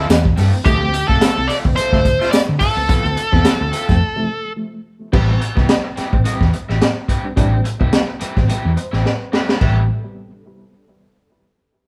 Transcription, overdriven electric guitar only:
0.09 muted overdriven electric guitar stroke medium
0.36 0.53 C4 medium
0.36 0.52 F4 medium
0.36 0.52 A4 medium
0.36 0.51 E5 medium
0.52 muted overdriven electric guitar stroke soft
0.64 0.86 C4 medium
0.64 0.80 F4 medium
0.64 0.80 A4 loud
0.64 0.79 E5 loud
0.80 muted overdriven electric guitar stroke soft
0.92 muted overdriven electric guitar stroke soft
1.07 1.22 C4 medium
1.07 1.22 F4 medium
1.07 1.21 A4 medium
1.07 1.21 E5 medium
1.36 muted overdriven electric guitar stroke soft
1.48 1.68 C4 medium
1.48 1.64 F4 medium
1.48 1.63 A4 loud
1.48 1.62 E5 loud
1.64 muted overdriven electric guitar stroke medium
1.75 1.96 C4 medium
1.75 1.96 F4 medium
1.75 1.97 A4 loud
1.75 1.97 E5 loud
2.04 muted overdriven electric guitar stroke soft
2.19 2.31 C4 medium
2.19 2.31 F4 medium
2.19 2.32 A4 medium
2.19 2.32 E5 medium
2.32 muted overdriven electric guitar stroke soft
2.60 2.77 C4 medium
2.60 2.76 F4 medium
2.60 2.76 A4 medium
2.60 2.75 E5 medium
2.76 muted overdriven electric guitar stroke soft
2.88 3.08 C4 medium
2.88 3.04 F4 medium
2.88 3.03 A4 medium
2.88 3.03 E5 loud
3.04 muted overdriven electric guitar stroke soft
3.16 muted overdriven electric guitar stroke soft
3.32 3.46 C4 medium
3.32 3.46 F4 medium
3.32 3.46 A4 medium
3.32 3.45 E5 medium
3.60 muted overdriven electric guitar stroke soft
3.72 3.92 C4 medium
3.72 3.88 F4 medium
3.72 3.87 A4 medium
3.72 3.87 E5 loud
3.88 muted overdriven electric guitar stroke medium
5.13 5.32 C4 medium
5.13 5.29 G4 medium
5.13 5.28 B4 medium
5.13 5.27 E5 medium
5.28 muted overdriven electric guitar stroke soft
5.40 muted overdriven electric guitar stroke soft
5.56 5.70 C4 soft
5.56 5.70 G4 medium
5.56 5.69 B4 medium
5.56 5.69 E5 medium
5.84 muted overdriven electric guitar stroke soft
5.96 6.16 C4 medium
5.96 6.13 G4 medium
5.96 6.12 B4 medium
5.96 6.11 E5 medium
6.13 muted overdriven electric guitar stroke medium
6.25 6.46 C4 medium
6.25 6.46 G4 medium
6.25 6.47 B4 medium
6.25 6.47 E5 medium
6.53 muted overdriven electric guitar stroke soft
6.69 6.80 C4 medium
6.69 6.81 G4 medium
6.69 6.81 B4 medium
6.69 6.81 E5 medium
6.81 muted overdriven electric guitar stroke soft
7.09 7.25 C4 medium
7.09 7.25 G4 medium
7.09 7.24 B4 medium
7.09 7.24 E5 medium
7.25 muted overdriven electric guitar stroke medium
7.37 7.57 C4 medium
7.37 7.53 G4 medium
7.37 7.52 B4 medium
7.37 7.52 E5 medium
7.53 muted overdriven electric guitar stroke soft
7.65 muted overdriven electric guitar stroke soft
7.80 7.94 C4 soft
7.80 7.94 G4 medium
7.80 7.94 B4 medium
7.80 7.93 E5 medium
8.08 muted overdriven electric guitar stroke medium
8.20 8.40 C4 medium
8.20 8.36 G4 medium
8.20 8.36 B4 medium
8.20 8.35 E5 loud
8.36 muted overdriven electric guitar stroke medium
8.48 8.68 C4 medium
8.48 8.69 G4 loud
8.48 8.69 B4 loud
8.48 8.69 E5 loud
8.76 muted overdriven electric guitar stroke soft
8.92 9.03 C4 soft
8.92 9.03 G4 soft
8.92 9.04 B4 medium
8.92 9.05 E5 medium
9.04 muted overdriven electric guitar stroke medium
9.32 9.49 C4 medium
9.32 9.48 G4 medium
9.32 9.47 B4 medium
9.32 9.47 E5 medium
9.48 muted overdriven electric guitar stroke soft
9.60 9.79 C4 medium
9.60 9.79 G4 medium
9.60 9.80 B4 medium
9.60 9.80 E5 medium

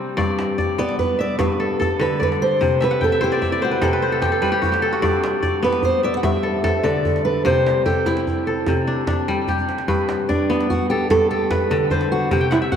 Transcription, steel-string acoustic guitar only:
0.79 0.98 D5 loud
0.99 1.20 B4 medium
1.21 1.39 D5 loud
1.39 1.81 B4 medium
1.82 2.01 A4 medium
2.01 2.19 B4 medium
2.23 2.28 B4 medium
2.42 2.83 C5 loud
2.84 3.03 B4 medium
3.04 3.23 A4 medium
3.24 3.64 G4 medium
3.65 3.84 F#4 medium
3.84 4.25 G4 medium
5.64 5.84 B4 medium
5.85 6.04 C5 medium
6.04 6.16 D5 medium
6.17 6.24 F#5 medium
6.24 6.81 E5 medium
6.84 7.24 D5 medium
7.25 7.45 B4 medium
7.45 7.85 C5 medium
7.86 8.07 A4 medium
8.07 8.49 G4 medium
10.29 10.67 D4 medium
10.70 10.88 F#4 medium
10.90 11.10 G4 medium
11.11 11.29 A4 loud
11.31 11.49 G4 medium
11.92 12.11 B4 medium
12.12 12.32 F#4 medium
12.33 12.51 G4 medium
12.52 12.57 E4 medium
12.72 12.76 F#4 medium

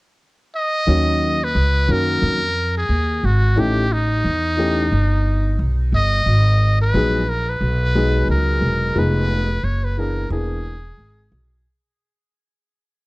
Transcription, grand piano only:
0.86 1.36 D#3 medium
0.86 1.36 F#3 medium
0.86 1.37 A#3 medium
0.86 1.37 C#4 medium
0.86 1.37 F#4 medium
1.88 2.37 D#3 medium
1.88 2.38 F#3 medium
1.88 2.38 A#3 medium
1.88 2.38 C#4 medium
1.88 2.39 F#4 medium
3.56 3.81 E3 medium
3.56 3.82 A3 medium
3.56 3.82 C#4 medium
3.56 3.82 D#4 medium
3.56 3.82 G4 medium
4.57 4.83 E3 medium
4.57 4.83 A3 medium
4.57 4.83 C#4 medium
4.57 4.83 D#4 medium
4.57 4.84 G4 medium
6.94 7.19 F#3 medium
6.94 7.19 G#3 medium
6.94 7.19 B3 medium
6.94 7.20 D#4 medium
6.94 7.20 G#4 medium
7.95 8.90 F#3 medium
7.95 8.90 G#3 medium
7.95 8.91 B3 medium
7.95 8.91 D#4 medium
7.95 8.91 G#4 medium
8.95 9.45 F3 medium
8.95 9.45 G#3 medium
8.95 9.46 B3 medium
8.95 9.46 D#4 medium
8.95 9.46 G#4 medium
9.97 10.22 E3 medium
9.97 10.23 A#3 medium
9.97 10.23 B3 medium
9.97 10.23 D4 medium
9.97 10.23 G#4 medium
10.30 10.72 E3 medium
10.30 10.72 A#3 medium
10.30 10.73 B3 medium
10.30 10.73 D4 medium
10.30 10.73 G#4 medium

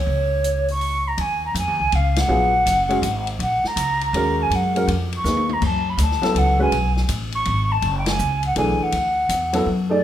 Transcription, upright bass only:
0.06 1.14 C#2 medium
1.18 1.54 D#2 medium
1.54 1.67 F2 medium
1.67 1.79 D#2 soft
1.80 1.91 C#2 medium
1.93 2.28 C#2 medium
2.29 2.65 A#1 medium
2.66 3.02 F#1 medium
3.02 3.38 G#1 medium
3.39 3.62 A#1 medium
3.64 muted upright bass stroke soft
3.76 4.12 C#2 medium
4.13 4.49 D#2 medium
4.50 4.86 F#2 medium
4.87 5.23 F2 medium
5.24 5.60 D#2 medium
5.62 5.97 F#2 medium
5.98 6.20 D2 medium
6.22 muted upright bass stroke soft
6.34 6.70 C#2 medium
6.72 7.07 B1 medium
7.09 7.44 A1 medium
7.46 7.81 G#1 medium
7.82 8.18 F#1 medium
8.19 8.55 C#2 medium
8.56 8.78 B1 medium
8.80 muted upright bass stroke soft
8.93 9.28 D2 medium
9.29 9.65 E2 medium
9.66 10.02 F#2 medium

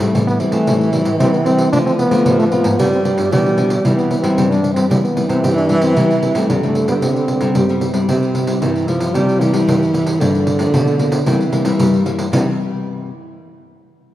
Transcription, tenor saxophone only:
0.00 0.11 C3 medium
0.14 1.74 E3 loud
1.72 2.79 F3 loud
2.79 3.28 G3 loud
3.33 3.87 G3 loud
3.86 4.64 E3 loud
4.92 6.52 E3 loud
6.51 7.58 D3 loud
7.56 8.08 C3 medium
8.08 8.63 C3 medium
8.61 8.89 E3 medium
8.87 9.16 F3 loud
9.15 9.41 G3 loud
9.39 10.21 E3 loud
10.20 11.26 D3 loud
11.26 12.17 E3 medium
12.34 12.58 E3 medium

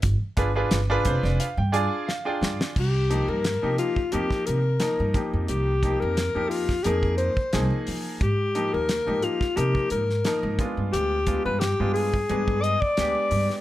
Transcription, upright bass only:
0.04 0.19 G1 loud
0.22 muted upright bass stroke soft
0.38 0.66 G1 medium
0.72 1.00 G1 medium
1.06 1.21 F1 medium
1.23 1.37 F1 medium
1.57 1.86 G2 medium
2.41 2.57 G2 medium
2.76 3.20 C2 medium
3.28 3.57 G2 medium
3.63 3.76 C3 medium
3.97 muted upright bass stroke soft
4.14 4.28 F2 medium
4.31 muted upright bass stroke soft
4.48 4.75 C3 medium
5.00 5.12 G2 medium
5.33 5.46 F2 medium
5.49 5.92 C2 medium
6.02 6.30 F2 medium
6.35 6.77 F2 medium
6.85 7.29 F2 medium
7.37 muted upright bass stroke soft
7.53 7.68 C2 medium
7.88 8.03 F3 medium
8.21 8.64 G#2 medium
8.74 9.02 D#2 medium
9.07 9.21 G#2 medium
9.41 muted upright bass stroke soft
9.57 9.72 C3 medium
9.75 muted upright bass stroke soft
9.91 10.19 G#2 medium
10.43 10.56 G#2 medium
10.59 muted upright bass stroke soft
10.77 10.91 G2 medium
10.93 11.37 D2 medium
11.45 11.74 G2 medium
11.80 12.21 G2 medium
12.30 12.74 G2 medium
12.82 muted upright bass stroke soft
12.98 13.13 D2 medium
13.31 13.47 G2 medium

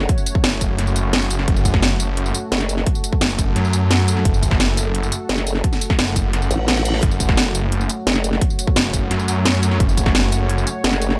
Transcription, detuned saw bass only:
0.44 0.77 F#1 medium
0.78 1.29 F#1 medium
1.30 1.46 F#1 loud
1.48 2.33 F#1 loud
3.21 3.54 F#1 medium
3.56 4.24 F#2 loud
4.25 5.11 F#1 medium
5.99 6.32 F#1 loud
6.33 6.49 F#1 loud
7.03 7.88 F#1 loud
8.76 9.09 F#1 loud
9.11 9.79 F#2 loud
9.80 10.65 F#1 medium

